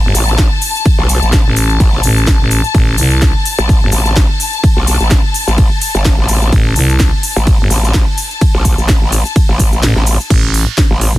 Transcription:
Already playing: string section A5
0.04 fm bass G1
0.15 wobble bass A1, open hi-hat, cabasa
0.28 cabasa
0.38 kick, snare, ride, cabasa
0.62 open hi-hat, cabasa
0.75 cabasa
0.85 kick, ride, cabasa
0.99 wobble bass B1
1.09 open hi-hat, cabasa
1.22 wobble bass A1, cabasa
1.33 kick, snare, ride, cabasa
1.46 fm bass A1
1.56 open hi-hat, cabasa
1.70 cabasa
1.80 wobble bass A1, kick, ride, cabasa
2.03 fm bass A1, open hi-hat, cabasa
2.17 cabasa
2.27 kick, snare, ride, cabasa
2.40 fm bass A1
2.51 open hi-hat, cabasa
2.64 cabasa
2.75 fm bass A1, kick, ride, cabasa
2.98 fm bass C2, open hi-hat, cabasa
3.11 cabasa
3.22 kick, snare, ride, cabasa
3.45 open hi-hat, cabasa
3.58 wobble bass A1, cabasa
3.69 kick, ride, cabasa
3.82 fm bass G1
3.92 wobble bass A1, open hi-hat, cabasa
4.06 cabasa
4.16 kick, snare, ride, cabasa
4.40 open hi-hat, cabasa
4.53 cabasa
4.64 kick, ride, cabasa
4.77 wobble bass B1
4.87 open hi-hat, cabasa
5.00 wobble bass A1, cabasa
5.10 kick, snare, ride, cabasa
5.34 open hi-hat, cabasa
5.48 wobble bass A1, cabasa
5.58 kick, ride, cabasa
5.81 open hi-hat, cabasa
5.95 wobble bass G1, cabasa
6.05 kick, snare, ride, cabasa
6.18 wobble bass A1
6.28 open hi-hat, cabasa
6.42 cabasa
6.53 fm bass A1, kick, ride, cabasa
6.76 fm bass C2, open hi-hat, cabasa
6.89 cabasa
7.00 kick, snare, ride, cabasa
7.23 open hi-hat, cabasa
7.36 wobble bass A1, cabasa
7.47 kick, ride, cabasa
7.60 fm bass G1
7.70 wobble bass A1, open hi-hat, cabasa
7.85 cabasa
7.94 kick, snare, ride, cabasa
8.18 open hi-hat, cabasa
8.31 cabasa
8.41 kick, ride, cabasa
8.55 wobble bass B1
8.65 kick, open hi-hat, cabasa
8.78 wobble bass A1, cabasa
8.88 kick, snare, ride, cabasa
9.02 wobble bass A1
9.12 open hi-hat, cabasa
9.25 cabasa
9.36 kick, ride, cabasa
9.49 wobble bass A1
9.59 kick, open hi-hat, cabasa
9.73 cabasa
9.83 fm bass A1, snare, ride, cabasa
9.96 wobble bass A1, snare
10.07 open hi-hat, cabasa
10.21 cabasa
10.30 fm bass A1, kick, ride, crash
10.54 open hi-hat
10.78 kick, snare, ride
10.91 wobble bass A1
11.01 open hi-hat
11.14 fm bass A1

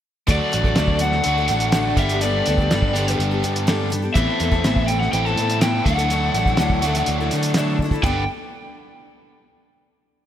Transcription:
0.27 fingered electric bass D2, steel-string acoustic guitar D3 A3 D4 F#4 A4, overdriven electric guitar D3 F#3 A3 D4 F#4, kick, closed hi-hat
0.32 lead electric guitar D5
0.52 fingered electric bass A1, steel-string acoustic guitar A3 D4 F#4 A4, closed hi-hat
0.64 steel-string acoustic guitar D4 F#4 A4, kick
0.76 fingered electric bass D2, steel-string acoustic guitar D3 A3 D4 F#4, snare, closed hi-hat
0.80 steel-string acoustic guitar A4
0.88 kick
0.99 steel-string acoustic guitar A3 D4, lead electric guitar F#5, closed hi-hat
1.04 steel-string acoustic guitar F#4 A4
1.12 snare
1.24 fingered electric bass D2, overdriven electric guitar D3 F#3 A3 D4 F#4, closed hi-hat
1.38 steel-string acoustic guitar D4 F#4 A4
1.48 fingered electric bass A1, steel-string acoustic guitar A3 D4 F#4, closed hi-hat
1.53 steel-string acoustic guitar A4
1.60 closed hi-hat
1.72 steel-string acoustic guitar D3 A3 D4 F#4, snare, closed hi-hat
1.77 steel-string acoustic guitar A4
1.95 fingered electric bass G1, overdriven electric guitar G2 D3 G3 B3 D4 G4, steel-string acoustic guitar B3, lead electric guitar E5, kick, closed hi-hat
2.01 steel-string acoustic guitar D4 G4 A4
2.09 steel-string acoustic guitar G4 A4, closed hi-hat
2.14 steel-string acoustic guitar D4
2.21 steel-string acoustic guitar G3 B3 D4 G4 A4, lead electric guitar D5, closed hi-hat
2.46 fingered electric bass D2, steel-string acoustic guitar B3 D4 G4 A4, closed hi-hat
2.58 steel-string acoustic guitar G4 A4, kick
2.62 steel-string acoustic guitar D4
2.71 fingered electric bass G1, steel-string acoustic guitar G3 B3 D4 G4 A4, snare, closed hi-hat
2.82 kick
2.93 overdriven electric guitar G2 D3 G3 B3 D4 G4, steel-string acoustic guitar B3 D4, closed hi-hat
2.97 steel-string acoustic guitar G4 A4
3.08 snare, closed hi-hat
3.19 fingered electric bass G1, closed hi-hat
3.31 steel-string acoustic guitar D4 G4 A4
3.43 fingered electric bass G2, steel-string acoustic guitar B3 D4 G4 A4, closed hi-hat
3.56 closed hi-hat
3.67 steel-string acoustic guitar G3 B3 D4 G4 A4, snare, closed hi-hat
3.90 steel-string acoustic guitar B3 D4 G4 A4, closed hi-hat
4.02 steel-string acoustic guitar D4 G4 A4
4.14 fingered electric bass A1, overdriven electric guitar A2 E3 C4 E4 A4, steel-string acoustic guitar A2 E3 B3 C4 E4 A4, lead electric guitar E5, kick, closed hi-hat
4.40 fingered electric bass E2, steel-string acoustic guitar B3 C4 E4 A4, closed hi-hat
4.51 steel-string acoustic guitar B3 C4 E4 A4, kick
4.64 fingered electric bass A1, steel-string acoustic guitar A2 E3 B3 C4 E4 A4, snare, closed hi-hat
4.76 kick
4.88 steel-string acoustic guitar C4 E4, lead electric guitar G5, closed hi-hat
4.92 steel-string acoustic guitar A4
5.00 lead electric guitar F#5, snare
5.12 fingered electric bass A1, overdriven electric guitar A2 E3 C4 E4 A4, lead electric guitar G5, closed hi-hat
5.25 steel-string acoustic guitar B3 C4 E4 A4, lead electric guitar A5
5.36 fingered electric bass A2, steel-string acoustic guitar B3 C4, closed hi-hat
5.41 steel-string acoustic guitar E4 A4
5.50 closed hi-hat
5.61 steel-string acoustic guitar A2 E3 B3 C4 E4 A4, lead electric guitar G5, snare, closed hi-hat
5.85 fingered electric bass D2, overdriven electric guitar D3 F#3 A3 D4 F#4, steel-string acoustic guitar A3 D4 E4, lead electric guitar F#5, kick, closed hi-hat
5.90 steel-string acoustic guitar A4
5.98 steel-string acoustic guitar A3 D4 E4 A4, closed hi-hat
6.10 steel-string acoustic guitar D3 F#3 A3 D4 E4 A4, closed hi-hat
6.34 fingered electric bass A1, steel-string acoustic guitar A3 D4 E4, closed hi-hat
6.39 steel-string acoustic guitar A4
6.46 steel-string acoustic guitar A3 D4 E4 A4, kick
6.57 fingered electric bass D2, steel-string acoustic guitar D3 F#3 A3 D4, snare, closed hi-hat
6.61 steel-string acoustic guitar E4 A4
6.70 kick
6.82 overdriven electric guitar D3 F#3 A3 D4 F#4, steel-string acoustic guitar A3 D4 E4, closed hi-hat
6.87 steel-string acoustic guitar A4
6.95 snare, closed hi-hat
7.06 fingered electric bass D2, closed hi-hat
7.20 steel-string acoustic guitar A3 D4 E4 A4
7.31 fingered electric bass D3, steel-string acoustic guitar A3 D4, closed hi-hat
7.35 steel-string acoustic guitar E4 A4
7.43 closed hi-hat
7.54 steel-string acoustic guitar D3 F#3, snare, closed hi-hat
7.58 steel-string acoustic guitar A3 D4 E4 A4
7.79 steel-string acoustic guitar A3, kick
7.84 steel-string acoustic guitar D4 E4 A4
7.91 steel-string acoustic guitar D4 E4 A4, kick
7.95 steel-string acoustic guitar A3
8.03 fingered electric bass G1, overdriven electric guitar G3 B3 D4 B4, steel-string acoustic guitar G3 B3 D4 G4 A4, lead electric guitar G5, kick, floor tom, ride bell

